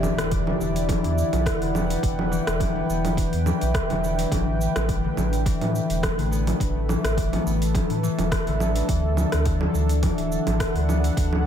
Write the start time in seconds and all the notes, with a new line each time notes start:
Already playing: E1 E3 A3 B3 D4 E4 G4 B4 D5 E5, impact
0.03 low conga, cabasa
0.18 E1, cross-stick, open hi-hat, cabasa
0.32 G3, kick, open hi-hat, cabasa
0.47 D3, low conga
0.60 E1 D3, cabasa
0.76 open hi-hat, cabasa
0.89 E3, kick, open hi-hat, low conga, cabasa
1.01 E2 F#5, open hi-hat
1.18 cabasa
1.33 B1, open hi-hat, low conga, cabasa
1.46 kick, cross-stick, open hi-hat, cabasa
1.54 G5
1.61 E1 D3, open hi-hat
1.74 B3, low conga, cabasa
1.90 open hi-hat, cabasa
2.03 E1, kick, open hi-hat, cabasa
2.19 low conga
2.32 E3, cabasa
2.47 E1, cross-stick, open hi-hat, cabasa
2.60 G3, kick, open hi-hat, low conga, cabasa
2.76 B3
2.89 E1 B3, cabasa
3.05 open hi-hat, low conga, cabasa
3.17 kick, open hi-hat, cabasa
3.33 E2, open hi-hat
3.46 E3, low conga, cabasa
3.61 B1, open hi-hat, cabasa
3.74 E3, kick, cross-stick, open hi-hat, cabasa
3.90 E1 D3, open hi-hat, low conga
4.04 B3, cabasa
4.19 F#3, open hi-hat, cabasa
4.32 A1 E3 A3, kick, open hi-hat, low conga, cabasa
4.58 A4, cabasa
4.76 A1, cross-stick, open hi-hat, low conga, cabasa
4.89 G3, kick, open hi-hat, cabasa
5.04 D3
5.17 A1 D3, low conga, cabasa
5.33 open hi-hat, cabasa
5.46 E3, kick, open hi-hat, cabasa
5.61 A2, open hi-hat, low conga
5.75 cabasa
5.90 E1, open hi-hat, cabasa
6.03 kick, cross-stick, open hi-hat, low conga, cabasa
6.18 A1 D3, open hi-hat
6.31 B3, cabasa
6.47 open hi-hat, low conga, cabasa
6.60 A1, kick, open hi-hat, cabasa
6.89 E3, low conga, cabasa
7.04 A1, cross-stick, open hi-hat, cabasa
7.17 G3, kick, open hi-hat, cabasa
7.33 B3, open hi-hat, low conga
7.46 A1 B3, cabasa
7.62 open hi-hat, cabasa
7.75 kick, open hi-hat, low conga, cabasa
7.90 A2, open hi-hat
8.03 E3, cabasa
8.18 E1, open hi-hat, low conga, cabasa
8.31 E3, kick, cross-stick, open hi-hat, cabasa
8.47 A1 D3, open hi-hat
8.60 B3, low conga, cabasa
8.75 F#3, open hi-hat, cabasa
8.88 D2 E3 D4, kick, open hi-hat, cabasa
9.17 low conga, cabasa
9.32 D2, cross-stick, open hi-hat, cabasa
9.45 F#3, kick, open hi-hat, cabasa
9.61 D3, low conga
9.74 D2 D3, cabasa
9.89 open hi-hat, cabasa
10.03 E3, kick, open hi-hat, low conga, cabasa
10.07 F#5
10.16 D1 E5, open hi-hat
10.32 cabasa
10.47 A1, open hi-hat, low conga, cabasa
10.60 kick, cross-stick, open hi-hat, cabasa
10.75 D2 D3, open hi-hat
10.88 B3, low conga, cabasa
11.04 open hi-hat, cabasa
11.17 D2, kick, open hi-hat, cabasa
11.33 low conga